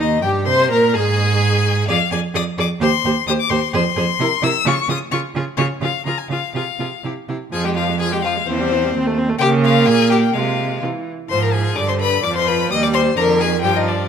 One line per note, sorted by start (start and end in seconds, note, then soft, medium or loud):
0.00 0.24 D#2 loud
0.00 0.22 D#4 medium
0.00 0.21 D#5 loud
0.22 0.48 G2 medium
0.22 0.46 G4 medium
0.22 0.47 G4 medium
0.22 0.30 G5 loud
0.45 0.72 C3 medium
0.45 0.70 C5 loud
0.45 0.71 C5 loud
0.45 0.70 C6 loud
0.71 0.96 A#2 loud
0.71 0.95 A#4 loud
0.71 0.97 A#5 loud
0.94 1.87 G#2 loud
0.94 1.88 G#4 loud
0.94 1.87 G#4 loud
0.94 1.88 G#5 loud
1.88 1.96 F2 loud
1.88 1.97 G#4 medium
1.88 1.96 D5 medium
1.88 2.11 F5 loud
2.11 2.19 F2 medium
2.11 2.20 G#4 medium
2.11 2.20 D5 medium
2.11 2.20 G#5 loud
2.34 2.43 F2 medium
2.34 2.42 G#4 medium
2.34 2.43 D5 medium
2.34 2.44 D#6 loud
2.58 2.66 F2 medium
2.58 2.66 G#4 medium
2.58 2.66 D5 medium
2.58 2.68 D6 loud
2.80 2.88 D#2 loud
2.80 2.89 G4 loud
2.80 2.89 C5 loud
2.80 3.27 C6 loud
3.04 3.12 D#2 loud
3.04 3.13 G4 medium
3.04 3.13 C5 medium
3.27 3.35 D#2 loud
3.27 3.36 G4 medium
3.27 3.37 C5 medium
3.27 3.32 D#6 loud
3.40 3.51 D6 loud
3.50 3.58 D#2 loud
3.50 3.58 G4 medium
3.50 3.59 C5 medium
3.50 3.73 C6 loud
3.73 3.82 F2 loud
3.73 3.81 G#4 loud
3.73 3.83 C5 medium
3.73 4.45 C6 loud
3.96 4.04 F2 loud
3.96 4.04 G#4 medium
3.96 4.06 C5 medium
4.19 4.27 C3 medium
4.19 4.29 E4 medium
4.19 4.29 A#4 medium
4.42 4.50 C3 loud
4.42 4.50 E4 medium
4.42 4.52 A#4 medium
4.42 4.68 E6 loud
4.65 4.73 C#3 loud
4.65 4.74 F4 medium
4.65 4.75 G#4 medium
4.65 4.89 C#6 loud
4.88 4.96 C#3 medium
4.88 4.97 F4 medium
4.88 4.97 G#4 medium
4.88 4.98 D#6 loud
5.11 5.20 C#3 medium
5.11 5.20 F4 medium
5.11 5.21 G#4 medium
5.11 5.19 C#6 loud
5.35 5.43 C#3 medium
5.35 5.44 F4 medium
5.35 5.44 G#4 medium
5.57 5.66 C#3 loud
5.57 5.68 F4 medium
5.57 5.67 G#4 medium
5.57 5.65 C#5 loud
5.81 5.89 C#3 medium
5.81 5.91 F4 medium
5.81 5.91 G#4 medium
5.81 6.06 F5 loud
6.05 6.13 C#3 medium
6.05 6.15 F4 medium
6.05 6.15 G#4 medium
6.05 6.20 A#5 loud
6.18 6.30 G#5 medium
6.29 6.37 C#3 medium
6.29 6.40 F4 medium
6.29 6.39 G#4 medium
6.29 6.54 F5 loud
6.54 6.62 C3 medium
6.54 6.64 F4 medium
6.54 6.64 G#4 medium
6.54 7.03 F5 loud
6.79 6.87 C3 medium
6.79 6.88 F4 medium
6.79 6.88 G#4 medium
7.04 7.12 C3 medium
7.04 7.12 E4 medium
7.04 7.13 G4 medium
7.29 7.37 C3 medium
7.29 7.37 E4 medium
7.29 7.37 G4 medium
7.52 8.43 F2 medium
7.52 7.66 F3 medium
7.52 7.66 G#4 loud
7.52 7.64 G#5 loud
7.64 7.78 G#3 medium
7.64 7.75 G4 medium
7.64 7.70 G5 medium
7.75 7.90 F3 medium
7.75 7.84 F4 medium
7.75 7.99 F5 loud
7.89 8.01 G#3 medium
8.00 8.14 F3 medium
8.00 8.12 G#4 loud
8.00 8.14 G#5 loud
8.12 8.26 G#3 medium
8.12 8.17 G4 medium
8.12 8.24 G5 loud
8.22 8.38 F3 medium
8.22 8.32 F4 loud
8.22 8.48 F5 loud
8.36 8.47 G#3 medium
8.47 8.95 E2 medium
8.47 8.61 E3 medium
8.47 9.16 C4 medium
8.47 9.16 C5 loud
8.60 8.74 G3 medium
8.72 8.85 E3 medium
8.84 8.94 G3 medium
8.94 9.39 D#2 medium
8.94 9.08 C4 medium
9.07 9.20 A3 medium
9.18 9.31 C4 medium
9.29 9.40 A3 medium
9.39 9.88 C#3 loud
9.39 10.36 A#3 loud
9.39 9.49 G4 loud
9.39 9.47 G5 loud
9.64 9.89 F4 loud
9.64 9.87 F5 loud
9.86 10.33 A#2 loud
9.86 10.11 G#4 loud
9.86 10.11 G#5 loud
10.10 10.19 G4 medium
10.10 10.35 G5 loud
10.33 10.82 C3 medium
10.33 10.84 G#3 medium
10.33 10.82 F4 medium
10.33 10.82 F5 loud
10.82 10.90 C3 medium
10.82 11.10 E3 medium
11.30 11.74 G#2 medium
11.30 11.77 F3 medium
11.30 11.41 C5 loud
11.30 11.44 C6 loud
11.42 11.53 A#4 medium
11.42 11.54 A#5 loud
11.53 11.79 G#4 medium
11.53 11.77 G#5 loud
11.76 12.23 G2 medium
11.76 12.25 D3 medium
11.76 11.90 D5 loud
11.76 11.88 D6 loud
11.88 12.00 C5 medium
11.88 11.93 C6 loud
12.00 12.22 B4 loud
12.00 12.25 B5 loud
12.23 12.69 F2 medium
12.23 12.71 F3 medium
12.23 12.34 D5 loud
12.23 12.35 D6 loud
12.35 12.48 C5 medium
12.35 12.49 C6 loud
12.47 12.70 B4 loud
12.47 12.71 B5 loud
12.70 13.16 D#2 medium
12.70 13.15 G3 medium
12.70 12.84 D#5 loud
12.70 12.76 D#6 loud
12.83 12.96 D5 loud
12.83 12.87 D6 loud
12.94 13.17 C5 loud
12.94 13.02 C6 loud
13.16 13.65 F2 loud
13.16 13.40 D3 medium
13.16 13.42 A#4 loud
13.16 13.24 A#5 loud
13.39 13.62 D#3 medium
13.39 13.63 G#4 loud
13.39 13.61 G#5 loud
13.61 14.08 G2 medium
13.61 14.08 F3 medium
13.61 13.69 G4 loud
13.61 13.78 G5 loud
13.76 13.89 D#4 medium
13.76 13.89 D#5 loud
13.88 14.08 D4 medium
13.88 14.08 D5 medium